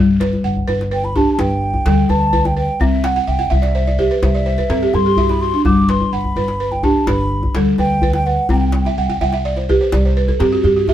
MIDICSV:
0, 0, Header, 1, 5, 480
1, 0, Start_track
1, 0, Key_signature, 1, "major"
1, 0, Tempo, 473934
1, 2843, Time_signature, 12, 3, 24, 8
1, 11078, End_track
2, 0, Start_track
2, 0, Title_t, "Flute"
2, 0, Program_c, 0, 73
2, 945, Note_on_c, 0, 79, 78
2, 1060, Note_on_c, 0, 83, 75
2, 1076, Note_off_c, 0, 79, 0
2, 1181, Note_on_c, 0, 81, 68
2, 1196, Note_off_c, 0, 83, 0
2, 1342, Note_off_c, 0, 81, 0
2, 1346, Note_on_c, 0, 81, 63
2, 1414, Note_on_c, 0, 79, 86
2, 1429, Note_off_c, 0, 81, 0
2, 2127, Note_on_c, 0, 81, 90
2, 2143, Note_off_c, 0, 79, 0
2, 2492, Note_on_c, 0, 79, 79
2, 2507, Note_off_c, 0, 81, 0
2, 2607, Note_off_c, 0, 79, 0
2, 2613, Note_on_c, 0, 79, 84
2, 2854, Note_on_c, 0, 76, 80
2, 2869, Note_off_c, 0, 79, 0
2, 3091, Note_on_c, 0, 78, 82
2, 3107, Note_off_c, 0, 76, 0
2, 3328, Note_on_c, 0, 79, 74
2, 3343, Note_off_c, 0, 78, 0
2, 3567, Note_on_c, 0, 76, 83
2, 3582, Note_off_c, 0, 79, 0
2, 4284, Note_off_c, 0, 76, 0
2, 4293, Note_on_c, 0, 76, 90
2, 5009, Note_on_c, 0, 84, 101
2, 5024, Note_off_c, 0, 76, 0
2, 5373, Note_on_c, 0, 83, 91
2, 5388, Note_off_c, 0, 84, 0
2, 5482, Note_on_c, 0, 84, 91
2, 5497, Note_off_c, 0, 83, 0
2, 5721, Note_off_c, 0, 84, 0
2, 5726, Note_on_c, 0, 86, 92
2, 5969, Note_on_c, 0, 84, 92
2, 5985, Note_off_c, 0, 86, 0
2, 6203, Note_on_c, 0, 83, 89
2, 6218, Note_off_c, 0, 84, 0
2, 6804, Note_on_c, 0, 79, 77
2, 6819, Note_off_c, 0, 83, 0
2, 6926, Note_on_c, 0, 81, 76
2, 6941, Note_off_c, 0, 79, 0
2, 7162, Note_on_c, 0, 83, 88
2, 7178, Note_off_c, 0, 81, 0
2, 7643, Note_off_c, 0, 83, 0
2, 7891, Note_on_c, 0, 79, 97
2, 8223, Note_off_c, 0, 79, 0
2, 8250, Note_on_c, 0, 79, 95
2, 8368, Note_on_c, 0, 78, 85
2, 8383, Note_off_c, 0, 79, 0
2, 8607, Note_off_c, 0, 78, 0
2, 8627, Note_on_c, 0, 79, 87
2, 8688, Note_off_c, 0, 79, 0
2, 8698, Note_on_c, 0, 79, 62
2, 8762, Note_off_c, 0, 79, 0
2, 8784, Note_on_c, 0, 79, 65
2, 8843, Note_off_c, 0, 79, 0
2, 8859, Note_on_c, 0, 79, 54
2, 8919, Note_off_c, 0, 79, 0
2, 8925, Note_on_c, 0, 79, 57
2, 8990, Note_off_c, 0, 79, 0
2, 9014, Note_on_c, 0, 79, 50
2, 9073, Note_off_c, 0, 79, 0
2, 9094, Note_on_c, 0, 79, 58
2, 9152, Note_off_c, 0, 79, 0
2, 9166, Note_on_c, 0, 79, 47
2, 9226, Note_off_c, 0, 79, 0
2, 9248, Note_on_c, 0, 79, 59
2, 9306, Note_off_c, 0, 79, 0
2, 9322, Note_on_c, 0, 79, 60
2, 9381, Note_off_c, 0, 79, 0
2, 9398, Note_on_c, 0, 79, 70
2, 9457, Note_off_c, 0, 79, 0
2, 11078, End_track
3, 0, Start_track
3, 0, Title_t, "Balafon"
3, 0, Program_c, 1, 12
3, 0, Note_on_c, 1, 55, 83
3, 0, Note_on_c, 1, 76, 64
3, 205, Note_off_c, 1, 76, 0
3, 206, Note_on_c, 1, 71, 68
3, 446, Note_off_c, 1, 55, 0
3, 447, Note_on_c, 1, 78, 60
3, 672, Note_off_c, 1, 71, 0
3, 684, Note_on_c, 1, 71, 79
3, 913, Note_off_c, 1, 71, 0
3, 925, Note_on_c, 1, 71, 64
3, 1166, Note_off_c, 1, 78, 0
3, 1170, Note_on_c, 1, 62, 70
3, 1170, Note_on_c, 1, 67, 55
3, 1396, Note_off_c, 1, 71, 0
3, 1408, Note_on_c, 1, 71, 63
3, 1647, Note_off_c, 1, 62, 0
3, 1885, Note_on_c, 1, 55, 77
3, 1886, Note_off_c, 1, 67, 0
3, 1886, Note_on_c, 1, 69, 67
3, 2114, Note_off_c, 1, 71, 0
3, 2126, Note_on_c, 1, 71, 65
3, 2348, Note_off_c, 1, 71, 0
3, 2360, Note_on_c, 1, 71, 77
3, 2364, Note_off_c, 1, 55, 0
3, 2586, Note_off_c, 1, 71, 0
3, 2599, Note_on_c, 1, 71, 60
3, 2604, Note_off_c, 1, 69, 0
3, 2843, Note_on_c, 1, 60, 89
3, 3080, Note_off_c, 1, 71, 0
3, 3080, Note_on_c, 1, 79, 66
3, 3202, Note_on_c, 1, 78, 67
3, 3304, Note_off_c, 1, 79, 0
3, 3316, Note_on_c, 1, 76, 65
3, 3322, Note_off_c, 1, 60, 0
3, 3420, Note_off_c, 1, 78, 0
3, 3432, Note_on_c, 1, 78, 68
3, 3534, Note_off_c, 1, 76, 0
3, 3546, Note_on_c, 1, 76, 74
3, 3659, Note_off_c, 1, 78, 0
3, 3666, Note_on_c, 1, 74, 65
3, 3777, Note_off_c, 1, 76, 0
3, 3797, Note_on_c, 1, 72, 72
3, 3896, Note_off_c, 1, 74, 0
3, 3923, Note_on_c, 1, 74, 60
3, 4022, Note_off_c, 1, 72, 0
3, 4038, Note_on_c, 1, 67, 65
3, 4038, Note_on_c, 1, 72, 58
3, 4145, Note_off_c, 1, 74, 0
3, 4163, Note_on_c, 1, 71, 67
3, 4262, Note_off_c, 1, 72, 0
3, 4281, Note_on_c, 1, 72, 69
3, 4385, Note_off_c, 1, 71, 0
3, 4402, Note_on_c, 1, 74, 60
3, 4504, Note_off_c, 1, 72, 0
3, 4517, Note_on_c, 1, 72, 65
3, 4519, Note_off_c, 1, 67, 0
3, 4625, Note_off_c, 1, 74, 0
3, 4639, Note_on_c, 1, 71, 62
3, 4742, Note_off_c, 1, 72, 0
3, 4757, Note_on_c, 1, 60, 66
3, 4760, Note_on_c, 1, 69, 68
3, 4863, Note_off_c, 1, 71, 0
3, 4886, Note_on_c, 1, 67, 62
3, 4984, Note_off_c, 1, 69, 0
3, 5009, Note_on_c, 1, 69, 64
3, 5107, Note_off_c, 1, 67, 0
3, 5124, Note_on_c, 1, 67, 63
3, 5228, Note_off_c, 1, 69, 0
3, 5239, Note_off_c, 1, 60, 0
3, 5243, Note_on_c, 1, 76, 68
3, 5244, Note_on_c, 1, 66, 68
3, 5346, Note_off_c, 1, 67, 0
3, 5372, Note_on_c, 1, 64, 58
3, 5466, Note_off_c, 1, 66, 0
3, 5493, Note_on_c, 1, 66, 58
3, 5590, Note_off_c, 1, 64, 0
3, 5608, Note_on_c, 1, 62, 62
3, 5711, Note_off_c, 1, 66, 0
3, 5722, Note_off_c, 1, 76, 0
3, 5729, Note_on_c, 1, 55, 82
3, 5828, Note_off_c, 1, 62, 0
3, 5971, Note_on_c, 1, 71, 65
3, 6205, Note_off_c, 1, 55, 0
3, 6207, Note_on_c, 1, 78, 60
3, 6437, Note_off_c, 1, 71, 0
3, 6449, Note_on_c, 1, 71, 74
3, 6674, Note_off_c, 1, 71, 0
3, 6687, Note_on_c, 1, 71, 63
3, 6923, Note_on_c, 1, 62, 69
3, 6925, Note_off_c, 1, 78, 0
3, 6925, Note_on_c, 1, 67, 57
3, 7158, Note_off_c, 1, 71, 0
3, 7170, Note_on_c, 1, 71, 63
3, 7403, Note_off_c, 1, 62, 0
3, 7644, Note_off_c, 1, 67, 0
3, 7652, Note_on_c, 1, 55, 74
3, 7657, Note_on_c, 1, 69, 62
3, 7879, Note_off_c, 1, 71, 0
3, 7891, Note_on_c, 1, 71, 65
3, 8120, Note_off_c, 1, 71, 0
3, 8129, Note_off_c, 1, 55, 0
3, 8132, Note_on_c, 1, 71, 75
3, 8360, Note_off_c, 1, 71, 0
3, 8371, Note_off_c, 1, 69, 0
3, 8372, Note_on_c, 1, 71, 60
3, 8612, Note_on_c, 1, 60, 83
3, 8849, Note_off_c, 1, 71, 0
3, 8977, Note_on_c, 1, 76, 72
3, 9089, Note_off_c, 1, 60, 0
3, 9095, Note_on_c, 1, 78, 70
3, 9195, Note_off_c, 1, 76, 0
3, 9212, Note_on_c, 1, 79, 67
3, 9315, Note_off_c, 1, 78, 0
3, 9330, Note_on_c, 1, 76, 72
3, 9331, Note_on_c, 1, 78, 66
3, 9434, Note_off_c, 1, 79, 0
3, 9443, Note_off_c, 1, 76, 0
3, 9455, Note_on_c, 1, 76, 67
3, 9553, Note_off_c, 1, 78, 0
3, 9573, Note_on_c, 1, 74, 71
3, 9675, Note_off_c, 1, 76, 0
3, 9693, Note_on_c, 1, 72, 63
3, 9794, Note_off_c, 1, 74, 0
3, 9816, Note_on_c, 1, 71, 62
3, 9819, Note_on_c, 1, 67, 74
3, 9915, Note_off_c, 1, 72, 0
3, 9937, Note_on_c, 1, 72, 66
3, 10036, Note_off_c, 1, 71, 0
3, 10063, Note_on_c, 1, 74, 64
3, 10157, Note_off_c, 1, 72, 0
3, 10181, Note_on_c, 1, 72, 64
3, 10281, Note_off_c, 1, 74, 0
3, 10296, Note_off_c, 1, 67, 0
3, 10299, Note_on_c, 1, 71, 68
3, 10400, Note_off_c, 1, 72, 0
3, 10413, Note_on_c, 1, 69, 60
3, 10519, Note_off_c, 1, 71, 0
3, 10529, Note_on_c, 1, 60, 75
3, 10532, Note_on_c, 1, 67, 67
3, 10636, Note_off_c, 1, 69, 0
3, 10659, Note_on_c, 1, 66, 66
3, 10756, Note_off_c, 1, 67, 0
3, 10782, Note_on_c, 1, 67, 71
3, 10879, Note_off_c, 1, 66, 0
3, 10902, Note_on_c, 1, 66, 62
3, 11001, Note_off_c, 1, 67, 0
3, 11012, Note_off_c, 1, 60, 0
3, 11027, Note_on_c, 1, 67, 63
3, 11027, Note_on_c, 1, 76, 74
3, 11078, Note_off_c, 1, 66, 0
3, 11078, Note_off_c, 1, 67, 0
3, 11078, Note_off_c, 1, 76, 0
3, 11078, End_track
4, 0, Start_track
4, 0, Title_t, "Upright bass"
4, 0, Program_c, 2, 32
4, 0, Note_on_c, 2, 31, 87
4, 344, Note_off_c, 2, 31, 0
4, 447, Note_on_c, 2, 31, 79
4, 636, Note_off_c, 2, 31, 0
4, 688, Note_on_c, 2, 31, 85
4, 1255, Note_off_c, 2, 31, 0
4, 1403, Note_on_c, 2, 31, 95
4, 1782, Note_off_c, 2, 31, 0
4, 1880, Note_on_c, 2, 38, 84
4, 2071, Note_off_c, 2, 38, 0
4, 2119, Note_on_c, 2, 38, 91
4, 2688, Note_off_c, 2, 38, 0
4, 2833, Note_on_c, 2, 36, 87
4, 3215, Note_off_c, 2, 36, 0
4, 3317, Note_on_c, 2, 36, 76
4, 3508, Note_off_c, 2, 36, 0
4, 3554, Note_on_c, 2, 36, 88
4, 4125, Note_off_c, 2, 36, 0
4, 4275, Note_on_c, 2, 36, 83
4, 4656, Note_off_c, 2, 36, 0
4, 4755, Note_on_c, 2, 43, 75
4, 4947, Note_off_c, 2, 43, 0
4, 5002, Note_on_c, 2, 43, 86
4, 5570, Note_off_c, 2, 43, 0
4, 5726, Note_on_c, 2, 31, 85
4, 6103, Note_off_c, 2, 31, 0
4, 6204, Note_on_c, 2, 31, 72
4, 6392, Note_off_c, 2, 31, 0
4, 6440, Note_on_c, 2, 31, 79
4, 7009, Note_off_c, 2, 31, 0
4, 7159, Note_on_c, 2, 31, 95
4, 7540, Note_off_c, 2, 31, 0
4, 7650, Note_on_c, 2, 38, 78
4, 7837, Note_off_c, 2, 38, 0
4, 7886, Note_on_c, 2, 38, 86
4, 8454, Note_off_c, 2, 38, 0
4, 8608, Note_on_c, 2, 36, 94
4, 8986, Note_off_c, 2, 36, 0
4, 9090, Note_on_c, 2, 36, 74
4, 9278, Note_off_c, 2, 36, 0
4, 9325, Note_on_c, 2, 36, 78
4, 9896, Note_off_c, 2, 36, 0
4, 10053, Note_on_c, 2, 36, 97
4, 10431, Note_off_c, 2, 36, 0
4, 10535, Note_on_c, 2, 43, 77
4, 10724, Note_off_c, 2, 43, 0
4, 10777, Note_on_c, 2, 43, 89
4, 11078, Note_off_c, 2, 43, 0
4, 11078, End_track
5, 0, Start_track
5, 0, Title_t, "Djembe"
5, 210, Note_on_c, 9, 62, 64
5, 311, Note_off_c, 9, 62, 0
5, 335, Note_on_c, 9, 63, 47
5, 436, Note_off_c, 9, 63, 0
5, 576, Note_on_c, 9, 62, 20
5, 576, Note_on_c, 9, 64, 48
5, 677, Note_off_c, 9, 62, 0
5, 677, Note_off_c, 9, 64, 0
5, 695, Note_on_c, 9, 63, 60
5, 796, Note_off_c, 9, 63, 0
5, 820, Note_on_c, 9, 62, 48
5, 921, Note_off_c, 9, 62, 0
5, 1049, Note_on_c, 9, 63, 48
5, 1151, Note_off_c, 9, 63, 0
5, 1173, Note_on_c, 9, 64, 62
5, 1274, Note_off_c, 9, 64, 0
5, 1405, Note_on_c, 9, 62, 64
5, 1405, Note_on_c, 9, 63, 66
5, 1506, Note_off_c, 9, 62, 0
5, 1506, Note_off_c, 9, 63, 0
5, 1759, Note_on_c, 9, 62, 17
5, 1759, Note_on_c, 9, 63, 47
5, 1759, Note_on_c, 9, 64, 45
5, 1861, Note_off_c, 9, 62, 0
5, 1861, Note_off_c, 9, 63, 0
5, 1861, Note_off_c, 9, 64, 0
5, 1881, Note_on_c, 9, 62, 69
5, 1982, Note_off_c, 9, 62, 0
5, 2118, Note_on_c, 9, 62, 20
5, 2118, Note_on_c, 9, 63, 62
5, 2219, Note_off_c, 9, 62, 0
5, 2219, Note_off_c, 9, 63, 0
5, 2234, Note_on_c, 9, 62, 20
5, 2336, Note_off_c, 9, 62, 0
5, 2359, Note_on_c, 9, 64, 66
5, 2461, Note_off_c, 9, 64, 0
5, 2483, Note_on_c, 9, 62, 52
5, 2483, Note_on_c, 9, 63, 54
5, 2584, Note_off_c, 9, 62, 0
5, 2584, Note_off_c, 9, 63, 0
5, 2844, Note_on_c, 9, 62, 23
5, 2844, Note_on_c, 9, 63, 66
5, 2844, Note_on_c, 9, 64, 67
5, 2946, Note_off_c, 9, 62, 0
5, 2946, Note_off_c, 9, 63, 0
5, 2946, Note_off_c, 9, 64, 0
5, 3077, Note_on_c, 9, 62, 67
5, 3179, Note_off_c, 9, 62, 0
5, 3199, Note_on_c, 9, 63, 47
5, 3300, Note_off_c, 9, 63, 0
5, 3435, Note_on_c, 9, 64, 51
5, 3536, Note_off_c, 9, 64, 0
5, 3559, Note_on_c, 9, 63, 61
5, 3660, Note_off_c, 9, 63, 0
5, 3676, Note_on_c, 9, 62, 50
5, 3777, Note_off_c, 9, 62, 0
5, 3802, Note_on_c, 9, 62, 20
5, 3903, Note_off_c, 9, 62, 0
5, 3924, Note_on_c, 9, 62, 21
5, 3924, Note_on_c, 9, 63, 49
5, 4026, Note_off_c, 9, 62, 0
5, 4026, Note_off_c, 9, 63, 0
5, 4045, Note_on_c, 9, 62, 19
5, 4045, Note_on_c, 9, 64, 58
5, 4146, Note_off_c, 9, 62, 0
5, 4146, Note_off_c, 9, 64, 0
5, 4164, Note_on_c, 9, 62, 21
5, 4265, Note_off_c, 9, 62, 0
5, 4280, Note_on_c, 9, 62, 62
5, 4280, Note_on_c, 9, 63, 68
5, 4381, Note_off_c, 9, 62, 0
5, 4381, Note_off_c, 9, 63, 0
5, 4520, Note_on_c, 9, 62, 20
5, 4622, Note_off_c, 9, 62, 0
5, 4641, Note_on_c, 9, 62, 19
5, 4641, Note_on_c, 9, 63, 52
5, 4641, Note_on_c, 9, 64, 48
5, 4743, Note_off_c, 9, 62, 0
5, 4743, Note_off_c, 9, 63, 0
5, 4743, Note_off_c, 9, 64, 0
5, 4757, Note_on_c, 9, 62, 61
5, 4859, Note_off_c, 9, 62, 0
5, 4878, Note_on_c, 9, 62, 22
5, 4980, Note_off_c, 9, 62, 0
5, 4996, Note_on_c, 9, 63, 62
5, 5098, Note_off_c, 9, 63, 0
5, 5234, Note_on_c, 9, 64, 66
5, 5335, Note_off_c, 9, 64, 0
5, 5361, Note_on_c, 9, 62, 49
5, 5361, Note_on_c, 9, 63, 51
5, 5462, Note_off_c, 9, 62, 0
5, 5462, Note_off_c, 9, 63, 0
5, 5481, Note_on_c, 9, 62, 20
5, 5582, Note_off_c, 9, 62, 0
5, 5602, Note_on_c, 9, 62, 21
5, 5704, Note_off_c, 9, 62, 0
5, 5722, Note_on_c, 9, 63, 68
5, 5722, Note_on_c, 9, 64, 71
5, 5823, Note_off_c, 9, 63, 0
5, 5823, Note_off_c, 9, 64, 0
5, 5962, Note_on_c, 9, 62, 66
5, 6063, Note_off_c, 9, 62, 0
5, 6084, Note_on_c, 9, 63, 52
5, 6185, Note_off_c, 9, 63, 0
5, 6326, Note_on_c, 9, 62, 21
5, 6326, Note_on_c, 9, 64, 50
5, 6427, Note_off_c, 9, 62, 0
5, 6427, Note_off_c, 9, 64, 0
5, 6444, Note_on_c, 9, 63, 64
5, 6546, Note_off_c, 9, 63, 0
5, 6565, Note_on_c, 9, 62, 53
5, 6667, Note_off_c, 9, 62, 0
5, 6804, Note_on_c, 9, 63, 49
5, 6905, Note_off_c, 9, 63, 0
5, 6919, Note_on_c, 9, 64, 68
5, 7020, Note_off_c, 9, 64, 0
5, 7162, Note_on_c, 9, 62, 74
5, 7162, Note_on_c, 9, 63, 67
5, 7263, Note_off_c, 9, 62, 0
5, 7263, Note_off_c, 9, 63, 0
5, 7525, Note_on_c, 9, 62, 23
5, 7525, Note_on_c, 9, 63, 54
5, 7525, Note_on_c, 9, 64, 56
5, 7626, Note_off_c, 9, 62, 0
5, 7626, Note_off_c, 9, 63, 0
5, 7626, Note_off_c, 9, 64, 0
5, 7642, Note_on_c, 9, 62, 72
5, 7744, Note_off_c, 9, 62, 0
5, 7882, Note_on_c, 9, 62, 22
5, 7882, Note_on_c, 9, 63, 68
5, 7983, Note_off_c, 9, 62, 0
5, 7983, Note_off_c, 9, 63, 0
5, 8004, Note_on_c, 9, 62, 23
5, 8105, Note_off_c, 9, 62, 0
5, 8120, Note_on_c, 9, 64, 78
5, 8221, Note_off_c, 9, 64, 0
5, 8238, Note_on_c, 9, 62, 60
5, 8238, Note_on_c, 9, 63, 62
5, 8340, Note_off_c, 9, 62, 0
5, 8340, Note_off_c, 9, 63, 0
5, 8599, Note_on_c, 9, 63, 80
5, 8599, Note_on_c, 9, 64, 76
5, 8700, Note_off_c, 9, 63, 0
5, 8700, Note_off_c, 9, 64, 0
5, 8835, Note_on_c, 9, 62, 71
5, 8937, Note_off_c, 9, 62, 0
5, 8965, Note_on_c, 9, 63, 60
5, 9066, Note_off_c, 9, 63, 0
5, 9209, Note_on_c, 9, 64, 53
5, 9310, Note_off_c, 9, 64, 0
5, 9329, Note_on_c, 9, 63, 62
5, 9430, Note_off_c, 9, 63, 0
5, 9444, Note_on_c, 9, 62, 54
5, 9545, Note_off_c, 9, 62, 0
5, 9687, Note_on_c, 9, 63, 53
5, 9788, Note_off_c, 9, 63, 0
5, 9818, Note_on_c, 9, 64, 64
5, 9920, Note_off_c, 9, 64, 0
5, 10051, Note_on_c, 9, 62, 71
5, 10051, Note_on_c, 9, 63, 72
5, 10152, Note_off_c, 9, 62, 0
5, 10152, Note_off_c, 9, 63, 0
5, 10414, Note_on_c, 9, 62, 19
5, 10414, Note_on_c, 9, 63, 51
5, 10414, Note_on_c, 9, 64, 51
5, 10515, Note_off_c, 9, 62, 0
5, 10515, Note_off_c, 9, 63, 0
5, 10515, Note_off_c, 9, 64, 0
5, 10535, Note_on_c, 9, 62, 65
5, 10636, Note_off_c, 9, 62, 0
5, 10772, Note_on_c, 9, 62, 19
5, 10772, Note_on_c, 9, 63, 60
5, 10874, Note_off_c, 9, 62, 0
5, 10874, Note_off_c, 9, 63, 0
5, 10898, Note_on_c, 9, 62, 19
5, 11000, Note_off_c, 9, 62, 0
5, 11016, Note_on_c, 9, 64, 62
5, 11078, Note_off_c, 9, 64, 0
5, 11078, End_track
0, 0, End_of_file